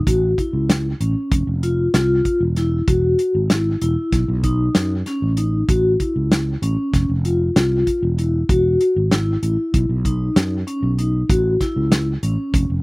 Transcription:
0.07 0.33 A1 medium
0.07 0.30 F#4 medium
0.07 kick medium
0.07 closed hi-hat medium
0.38 0.85 E4 medium
0.38 kick medium
0.38 closed hi-hat medium
0.53 0.93 C#2 medium
0.70 snare loud
0.70 closed hi-hat medium
1.01 1.14 A1 medium
1.01 1.47 C#4 medium
1.01 closed hi-hat medium
1.32 1.45 F1 medium
1.32 kick loud
1.32 closed hi-hat medium
1.47 1.87 F1 medium
1.63 1.86 F4 medium
1.63 closed hi-hat medium
1.94 2.20 C2 medium
1.94 2.40 F4 medium
1.94 snare loud
1.94 closed hi-hat medium
2.25 kick medium
2.25 closed hi-hat soft
2.41 2.80 E1 medium
2.56 2.80 E4 medium
2.56 snare soft
2.56 closed hi-hat medium
2.88 3.14 E1 medium
2.88 3.34 F#4 medium
2.88 kick loud
2.88 closed hi-hat medium
3.19 closed hi-hat medium
3.35 3.74 G#1 medium
3.50 3.74 E4 medium
3.50 snare loud
3.50 closed hi-hat medium
3.81 3.95 E1 medium
3.81 4.28 E4 medium
3.81 closed hi-hat medium
4.12 4.26 B1 medium
4.12 kick medium
4.12 snare soft
4.12 closed hi-hat medium
4.28 4.68 B1 medium
4.44 4.90 D#4 medium
4.44 kick medium
4.44 closed hi-hat medium
4.75 5.02 F#2 medium
4.75 snare loud
4.75 closed hi-hat medium
5.06 5.30 C#4 medium
5.06 snare soft
5.06 closed hi-hat medium
5.22 5.62 A1 medium
5.37 5.61 D#4 medium
5.37 closed hi-hat medium
5.69 5.95 A1 medium
5.69 5.92 F#4 medium
5.69 kick loud
5.69 closed hi-hat medium
6.00 6.47 E4 medium
6.00 kick medium
6.00 closed hi-hat medium
6.16 6.55 C#2 medium
6.32 snare loud
6.32 closed hi-hat medium
6.62 6.75 A1 medium
6.62 7.09 C#4 medium
6.62 closed hi-hat medium
6.94 7.07 F1 medium
6.94 kick medium
6.94 snare soft
6.94 closed hi-hat medium
7.09 7.49 F1 medium
7.25 7.48 F4 medium
7.25 closed hi-hat medium
7.56 7.82 C2 medium
7.56 8.02 F4 medium
7.56 snare loud
7.56 closed hi-hat medium
7.87 kick medium
7.87 closed hi-hat medium
8.03 8.42 E1 medium
8.18 8.41 E4 medium
8.18 closed hi-hat medium
8.49 8.76 E1 medium
8.49 8.95 F#4 medium
8.49 kick loud
8.49 closed hi-hat medium
8.81 closed hi-hat soft
8.96 9.36 G#1 medium
9.11 9.35 E4 medium
9.11 snare medium
9.11 closed hi-hat medium
9.43 9.56 A1 medium
9.43 9.89 E4 medium
9.43 closed hi-hat medium
9.74 9.87 B1 medium
9.74 kick medium
9.74 closed hi-hat medium
9.89 10.29 B1 medium
10.05 10.51 D#4 medium
10.05 kick medium
10.05 closed hi-hat medium
10.36 10.62 F#2 medium
10.36 snare loud
10.36 closed hi-hat medium
10.67 10.90 C#4 medium
10.67 closed hi-hat medium
10.83 11.22 B1 medium
10.98 11.21 D#4 medium
10.98 closed hi-hat medium
11.30 11.56 A1 medium
11.30 11.53 F#4 medium
11.30 kick loud
11.30 closed hi-hat medium
11.61 12.07 E4 medium
11.61 kick medium
11.61 snare soft
11.61 closed hi-hat medium
11.76 12.15 C#2 medium
11.92 snare loud
11.92 closed hi-hat medium
12.23 12.36 A1 medium
12.23 12.69 C#4 medium
12.23 closed hi-hat medium
12.54 12.67 F1 medium
12.54 kick loud
12.54 closed hi-hat medium
12.70 12.83 F1 medium

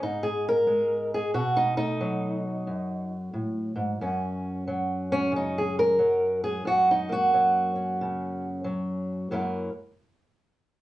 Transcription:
0.00 1.32 G#2 medium
0.00 0.66 G#3 medium
0.00 1.31 B3 soft
0.00 0.24 D#4 loud
0.23 0.45 G#4 medium
0.49 1.14 A#4 loud
0.67 1.31 G#3 medium
1.14 1.34 G#4 medium
1.34 2.67 B2 medium
1.34 1.56 F#4 medium
1.56 1.76 D#4 loud
1.77 2.43 A3 soft
1.77 3.10 D#4 loud
2.01 4.67 F#3 medium
2.67 3.33 F#2 medium
3.34 3.75 A2 medium
3.76 4.00 G#2 medium
4.01 6.65 F#2 medium
4.01 5.12 C#4 soft
4.67 5.98 F#3 medium
5.12 5.33 C#4 loud
5.32 5.98 C#3 medium
5.36 5.56 D#4 loud
5.58 5.78 G#4 medium
5.79 6.43 A#4 loud
5.99 7.33 F#3 medium
6.44 6.66 G#4 medium
6.65 9.30 F#2 medium
6.65 6.88 F#4 loud
6.91 7.11 D#4 medium
7.09 9.29 A#3 medium
7.09 8.44 F#4 loud
7.34 8.63 F#3 medium
7.76 9.33 C#4 soft
8.01 8.66 C#3 medium
8.64 9.28 F#3 medium
9.31 9.68 F#2 medium
9.31 9.68 F#3 medium
9.31 9.69 A#3 medium
9.31 9.69 E4 medium
9.31 9.70 A#4 medium

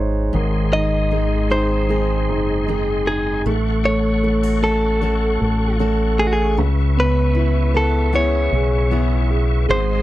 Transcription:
0.00 0.31 G#1 medium
0.00 1.13 G#3 soft
0.00 0.74 D#4 soft
0.00 0.32 C5 medium
0.00 3.48 C#5 medium
0.00 3.48 D#5 medium
0.00 3.48 E5 medium
0.00 3.48 F#5 medium
0.00 3.48 G#5 medium
0.00 3.48 C6 medium
0.33 2.29 G#1 medium
0.33 3.45 G#2 medium
0.33 3.42 D#3 medium
0.33 3.43 G#4 medium
0.33 3.43 D#5 medium
0.33 3.43 C6 medium
0.73 1.49 D#4 soft
0.73 1.51 D#5 medium
1.11 1.88 G#3 soft
1.11 1.89 D#4 soft
1.50 1.88 C4 soft
1.50 2.28 D#4 medium
1.50 2.64 C5 medium
1.89 2.68 G#3 soft
1.89 2.67 C4 medium
1.89 2.67 D#4 medium
1.89 2.68 G#4 medium
2.29 3.42 F#1 medium
2.29 3.07 D#4 soft
2.68 3.45 G#3 medium
2.68 3.54 C4 soft
2.68 3.54 D#4 medium
2.68 3.54 G#4 medium
3.07 3.45 D#4 soft
3.07 3.44 G#4 medium
3.46 5.37 A1 medium
3.46 6.58 A3 medium
3.46 3.83 A3 medium
3.46 6.55 A4 medium
3.46 6.55 F#5 medium
3.46 9.66 C#6 medium
3.85 4.22 A3 soft
3.85 4.59 C#5 medium
4.23 4.61 A3 soft
4.23 4.43 E4 soft
4.43 5.01 F#4 soft
4.62 5.00 A3 medium
4.62 5.01 C#4 soft
4.62 5.76 A4 medium
5.01 5.39 A3 soft
5.01 5.79 C#4 medium
5.01 5.79 F#4 medium
5.01 5.80 A4 medium
5.41 6.58 A1 medium
5.41 5.79 A3 soft
5.80 6.17 A3 medium
5.80 7.74 C#4 medium
5.80 6.66 F#4 medium
5.80 6.66 A4 medium
6.18 6.56 A3 soft
6.18 6.26 G#4 medium
6.27 6.33 F#4 medium
6.33 6.56 G#4 medium
6.58 8.49 C#2 medium
6.58 9.69 C#3 medium
6.58 9.66 C#3 medium
6.58 9.67 B4 medium
6.58 9.67 E5 medium
6.97 8.49 B3 soft
6.97 7.76 B4 medium
7.35 8.12 E4 medium
7.35 8.12 E4 soft
7.74 8.11 B3 medium
7.74 8.15 A4 medium
7.74 9.26 B4 medium
8.13 8.90 B3 medium
8.13 8.90 E4 medium
8.13 8.92 G#4 medium
8.13 9.67 C#5 medium
8.52 9.65 B1 medium
8.52 9.29 G#4 soft
8.91 9.77 B3 medium
8.91 9.67 E4 soft
8.91 9.77 E4 medium
8.91 10.02 G#4 medium
9.30 9.68 G#4 soft
9.69 10.02 G#1 medium
9.69 10.02 G#2 medium
9.69 10.02 G#3 medium
9.69 10.02 G#4 medium
9.69 10.02 C5 medium
9.69 10.02 D#5 medium
9.69 10.02 C6 medium

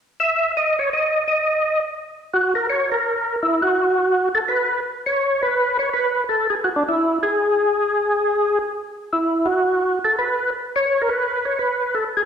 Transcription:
0.20 0.52 E5 loud
0.57 0.76 D#5 medium
0.79 0.90 C#5 medium
0.93 1.24 D#5 medium
1.28 1.80 D#5 medium
2.33 2.54 F#4 medium
2.55 2.67 A#4 medium
2.70 2.90 C#5 medium
2.92 3.36 A#4 medium
3.43 3.61 E4 medium
3.62 4.29 F#4 loud
4.35 4.40 A4 medium
4.48 4.80 B4 loud
5.06 5.41 C#5 loud
5.43 5.77 B4 loud
5.79 5.89 C#5 medium
5.94 6.24 B4 medium
6.29 6.47 A4 medium
6.50 6.55 G#4 medium
6.64 6.69 F#4 medium
6.76 6.83 D4 medium
6.89 7.18 E4 loud
7.23 8.59 G#4 loud
9.13 9.47 E4 medium
9.46 9.99 F#4 medium
10.05 10.16 A4 medium
10.18 10.50 B4 loud
10.76 11.02 C#5 loud
11.01 11.10 A#4 medium
11.09 11.46 B4 loud
11.45 11.59 C#5 loud
11.59 11.95 B4 medium
11.94 12.04 A4 medium
12.17 12.23 G#4 medium

